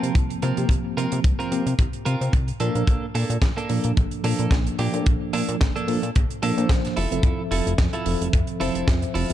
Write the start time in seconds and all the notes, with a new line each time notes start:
Already playing: F3 A#3 C4 F4 A#4 A5
0.03 C3, closed hi-hat
0.15 C2, kick, closed hi-hat
0.30 closed hi-hat
0.42 C3 C4 F4 A#4, closed hi-hat
0.57 C3 F3 A#3 C4 G4, closed hi-hat
0.69 C2, kick, closed hi-hat
0.97 C3 C4 F4 A#4, closed hi-hat
1.12 C3, closed hi-hat
1.24 C2, kick, closed hi-hat
1.39 C4 F4 A#4, closed hi-hat
1.51 C3 F3 A#3 C4 G4, closed hi-hat
1.67 C3, closed hi-hat
1.79 C2, kick, closed hi-hat
1.93 closed hi-hat
2.05 C3 C4 F4 A#4, closed hi-hat
2.21 C3, closed hi-hat
2.33 C2, kick, closed hi-hat
2.48 closed hi-hat
2.60 A#2 F3 A#3 D4 A4 A#4, closed hi-hat
2.75 A#2 F3 A#3 D4 A#4, closed hi-hat
2.87 A#1, kick, closed hi-hat
3.15 A#2 A#3 D4 A4, open hi-hat
3.30 A#2, closed hi-hat
3.42 A#1, kick, snare, closed hi-hat
3.57 A#3 D4 A4, closed hi-hat
3.69 A#2 F3 A#3 D4 A4, open hi-hat
3.84 A#2, closed hi-hat
3.97 A#1, kick, closed hi-hat
4.11 closed hi-hat
4.23 A#2 F3 A#3 D4 A4, open hi-hat
4.39 A#2, closed hi-hat
4.51 A#1, kick, snare, closed hi-hat
4.67 closed hi-hat
4.79 A#2 A#3 D4 G4, open hi-hat
4.92 A#2 F3 A#3 D4 A4, closed hi-hat
5.06 A#1, kick, closed hi-hat
5.33 A#2 A#3 D4 A4, open hi-hat
5.49 A#2, closed hi-hat
5.61 A#1, kick, snare, closed hi-hat
5.76 A#3 D4 A4, closed hi-hat
5.87 A#2 F3 A#3 D4 A4, open hi-hat
6.03 A#2, closed hi-hat
6.15 A#1, kick, closed hi-hat
6.30 closed hi-hat
6.42 A#2 F3 A#3 D4 A4, open hi-hat
6.57 A#2 F3 A#3 D4 C5, closed hi-hat
6.69 A#1, kick, snare, closed hi-hat
6.85 snare, closed hi-hat
6.96 F1 E4 F4 A4, open hi-hat
7.11 F1 F3 C4 A4 E5, closed hi-hat
7.23 F2, kick, closed hi-hat
7.51 F1 E4 F4 A4, open hi-hat
7.67 F1, closed hi-hat
7.78 F2, kick, snare, closed hi-hat
7.93 E4 F4 A4, closed hi-hat
8.06 F1 F3 C4 A4 E5, open hi-hat
8.21 F1, closed hi-hat
8.33 F2, kick, closed hi-hat
8.47 closed hi-hat
8.59 F1 F3 C4 E4 F4 A4 C5 E5, open hi-hat
8.75 F1, closed hi-hat
8.88 F2, kick, snare, closed hi-hat
9.02 closed hi-hat
9.14 F1 E4 F4 A4, open hi-hat
9.29 F1 F3 C4, closed hi-hat